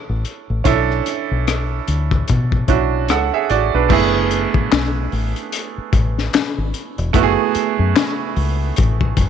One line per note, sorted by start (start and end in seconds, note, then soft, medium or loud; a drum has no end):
0.00 0.61 C#4 medium
0.00 0.62 D4 medium
0.00 0.62 E4 medium
0.00 0.66 A4 medium
0.09 0.23 A1 medium
0.25 closed hi-hat medium
0.50 0.63 A1 medium
0.64 1.00 B1 loud
0.64 2.64 C#4 medium
0.64 2.64 D4 medium
0.64 2.65 E4 medium
0.64 2.65 A4 medium
0.64 kick loud
0.64 closed hi-hat medium
0.91 cross-stick soft
1.06 cross-stick soft
1.06 closed hi-hat medium
1.31 1.79 B1 medium
1.47 cross-stick loud
1.47 closed hi-hat medium
1.88 2.22 D2 medium
1.88 closed hi-hat medium
2.11 kick medium
2.11 cross-stick soft
2.28 2.64 B2 loud
2.28 kick medium
2.28 closed hi-hat medium
2.52 kick medium
2.68 3.10 B1 medium
2.68 3.09 C#4 medium
2.68 3.09 D4 soft
2.68 3.09 E4 soft
2.68 3.10 F#4 medium
2.68 kick medium
2.68 closed hi-hat medium
3.08 3.30 C#2 medium
3.08 3.33 A4 soft
3.08 3.32 F#5 medium
3.08 cross-stick loud
3.08 closed hi-hat medium
3.34 3.49 G#4 soft
3.34 3.49 E5 medium
3.50 3.70 A1 medium
3.50 3.73 F#4 soft
3.50 3.73 D5 medium
3.50 closed hi-hat soft
3.74 3.88 B1 medium
3.74 4.13 D4 soft
3.74 4.13 B4 medium
3.89 4.45 F#1 loud
3.89 7.10 A3 medium
3.89 7.11 B3 medium
3.89 7.11 E4 medium
3.89 7.11 G#4 medium
3.89 kick loud
3.89 crash loud
4.31 closed hi-hat medium
4.54 muted fingered electric bass stroke soft
4.54 kick medium
4.72 5.06 B1 medium
4.72 snare loud
4.72 clap medium
4.72 closed hi-hat medium
5.12 5.33 A1 loud
5.12 open hi-hat soft
5.36 closed hi-hat soft
5.52 closed hi-hat medium
5.78 muted fingered electric bass stroke soft
5.93 6.27 A1 loud
5.93 kick loud
5.93 closed hi-hat medium
6.18 snare soft
6.33 muted fingered electric bass stroke soft
6.33 snare loud
6.33 clap medium
6.33 closed hi-hat medium
6.58 6.72 G#1 medium
6.74 closed hi-hat medium
6.98 7.12 E1 loud
6.98 closed hi-hat soft
7.13 7.35 F#1 loud
7.13 9.29 A3 medium
7.13 9.29 B3 medium
7.13 9.29 E4 medium
7.13 7.23 F#4 medium
7.13 kick loud
7.13 closed hi-hat medium
7.23 9.29 G#4 medium
7.55 muted fingered electric bass stroke soft
7.55 closed hi-hat medium
7.79 7.93 F#2 loud
7.96 snare loud
7.96 clap medium
7.96 closed hi-hat medium
8.36 8.71 C#2 medium
8.36 open hi-hat soft
8.76 9.12 A1 loud
8.76 kick loud
8.76 closed hi-hat medium
9.01 kick medium
9.17 9.29 F#1 loud
9.17 kick medium
9.17 closed hi-hat medium